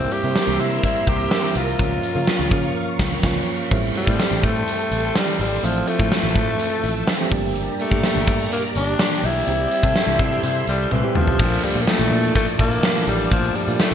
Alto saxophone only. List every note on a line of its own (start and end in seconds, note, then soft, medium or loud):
0.00 0.14 C4 medium
0.12 0.62 G4 loud
0.60 0.84 E4 medium
0.84 1.10 E4 medium
1.09 1.58 G4 medium
1.57 3.24 F4 medium
3.97 4.46 G3 medium
4.44 5.18 A3 loud
5.17 5.40 G3 medium
5.41 5.66 G3 medium
5.64 5.90 F3 loud
5.88 7.32 A3 loud
7.81 8.48 A3 medium
8.53 8.63 A#3 medium
8.76 9.26 D4 loud
9.25 10.68 E4 loud
10.68 10.94 G3 medium
10.92 11.18 E3 medium
11.16 11.66 F3 loud
11.64 11.83 G3 medium
11.81 11.90 A#3 medium
11.88 12.35 A3 loud
12.36 12.47 A3 loud
12.60 13.05 A#3 loud
13.08 13.30 G3 loud
13.33 13.58 F3 loud
13.56 13.82 G3 medium
13.80 13.94 A3 loud